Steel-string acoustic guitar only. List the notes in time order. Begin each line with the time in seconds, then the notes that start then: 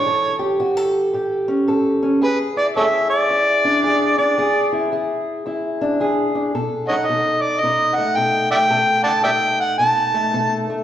Already playing: E3 E4
0.06 A2 A4
0.39 G4
0.59 A2 F#4
0.77 A4
1.13 A2 G4
1.48 C#4
1.68 A2 A4
2.03 C#4
2.21 E2 G#4
2.56 E4
2.76 E2 G#4
3.29 E2 E4
3.65 D4
3.83 E2 G#4
4.18 D4
4.37 E2 G#4
4.72 E4
4.92 E2 G#4
5.46 E2 E4
5.81 D4
6.00 E2 G#4
6.35 D4
6.55 B2 A4
6.90 D#4
7.09 B2 A4
7.63 B2 D#4
7.98 A3
8.17 B2 A4
8.51 A3
8.70 B2 A4
9.06 D#4
9.25 B2 A4
9.79 B2 D#4
10.14 A3
10.34 B2 A4
10.70 A3